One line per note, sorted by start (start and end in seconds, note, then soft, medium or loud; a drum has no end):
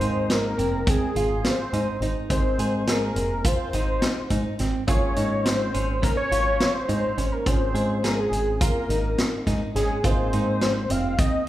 0.00 0.52 G#2 medium
0.00 2.26 C4 medium
0.00 2.26 D#4 medium
0.00 0.46 D#4 medium
0.00 2.26 G#4 medium
0.00 2.26 A#4 medium
0.00 0.33 C5 loud
0.00 closed hi-hat soft
0.30 0.91 A#4 loud
0.30 snare medium
0.30 closed hi-hat medium
0.58 0.84 F1 medium
0.58 0.81 C4 medium
0.58 closed hi-hat medium
0.87 1.10 C4 medium
0.87 1.48 G#4 medium
0.87 kick loud
0.87 closed hi-hat medium
1.16 1.41 G#1 medium
1.16 1.61 F4 medium
1.16 closed hi-hat medium
1.44 2.10 C5 loud
1.44 snare medium
1.44 closed hi-hat medium
1.73 1.86 G#2 medium
1.73 1.96 D#4 medium
1.73 closed hi-hat soft
2.00 2.14 G#1 medium
2.00 2.47 D#4 medium
2.00 closed hi-hat soft
2.29 2.56 G#1 medium
2.29 4.84 C4 medium
2.29 4.84 D#4 medium
2.29 4.85 G#4 medium
2.29 4.85 A#4 medium
2.29 2.91 C5 medium
2.29 kick medium
2.29 closed hi-hat medium
2.59 3.10 G#2 medium
2.59 2.82 G#4 medium
2.59 closed hi-hat medium
2.87 3.33 G#4 medium
2.87 3.48 A#4 medium
2.87 snare medium
2.87 closed hi-hat medium
3.16 3.42 F1 medium
3.16 closed hi-hat medium
3.45 3.68 F4 medium
3.45 4.61 C5 loud
3.45 kick loud
3.45 closed hi-hat medium
3.73 3.99 G#1 medium
3.73 4.19 D#4 medium
3.73 closed hi-hat medium
4.02 snare loud
4.02 closed hi-hat medium
4.30 4.44 G#2 medium
4.30 4.54 D#4 medium
4.30 kick medium
4.30 closed hi-hat medium
4.59 4.73 G#1 medium
4.59 4.82 C4 medium
4.59 snare soft
4.59 closed hi-hat soft
4.87 5.14 G#1 loud
4.87 7.42 A#3 medium
4.87 7.42 C#4 medium
4.87 7.42 F4 medium
4.87 5.11 F4 medium
4.87 7.42 G#4 medium
4.87 5.46 C#5 loud
4.87 kick loud
4.87 closed hi-hat medium
5.16 5.69 G#2 medium
5.16 5.62 D#4 medium
5.16 closed hi-hat medium
5.45 6.04 C5 loud
5.45 snare medium
5.45 closed hi-hat medium
5.74 6.01 G#1 medium
5.74 5.97 C#4 medium
5.74 closed hi-hat medium
6.02 6.25 C#4 medium
6.02 6.17 A#4 loud
6.02 kick loud
6.02 snare soft
6.02 closed hi-hat medium
6.17 6.76 C#5 loud
6.32 6.57 G#1 medium
6.32 6.77 F4 medium
6.32 closed hi-hat medium
6.60 snare loud
6.60 closed hi-hat medium
6.74 7.33 C5 loud
6.89 7.02 G#2 medium
6.89 7.11 D#4 medium
6.89 closed hi-hat medium
7.18 7.31 G#1 medium
7.18 7.63 C#4 medium
7.18 closed hi-hat medium
7.32 7.48 A#4 medium
7.46 7.72 G#1 loud
7.46 10.01 C4 medium
7.46 10.01 C#4 medium
7.46 10.01 F4 medium
7.46 10.01 G#4 medium
7.46 8.06 C5 medium
7.46 kick medium
7.46 closed hi-hat medium
7.74 8.26 G#2 medium
7.74 7.97 G#4 medium
7.74 closed hi-hat soft
8.04 8.49 G#4 medium
8.04 8.21 A#4 medium
8.04 snare medium
8.04 closed hi-hat medium
8.19 8.62 G#4 medium
8.31 8.58 G#1 medium
8.31 closed hi-hat medium
8.61 8.84 F4 medium
8.61 9.44 A#4 medium
8.61 kick loud
8.61 closed hi-hat medium
8.89 9.15 G#1 medium
8.89 9.35 D#4 medium
8.89 closed hi-hat medium
9.18 snare loud
9.18 closed hi-hat medium
9.47 9.60 G#2 medium
9.47 9.70 D#4 medium
9.47 kick medium
9.47 snare soft
9.47 closed hi-hat medium
9.75 9.88 G#1 medium
9.75 9.99 C#4 medium
9.75 10.06 G#4 medium
9.75 snare soft
9.75 closed hi-hat medium
10.03 10.30 G#1 medium
10.03 11.48 A#3 medium
10.03 11.48 C4 medium
10.03 11.48 D#4 medium
10.03 10.27 F4 medium
10.03 11.48 G#4 medium
10.03 10.92 C5 medium
10.03 kick medium
10.03 closed hi-hat medium
10.33 10.85 G#2 medium
10.33 10.78 D#4 medium
10.33 closed hi-hat medium
10.61 snare medium
10.61 closed hi-hat medium
10.90 11.16 F1 medium
10.90 11.13 C4 medium
10.90 11.20 F5 loud
10.90 closed hi-hat medium
11.18 11.41 C4 medium
11.18 11.48 D#5 loud
11.18 kick loud
11.18 closed hi-hat medium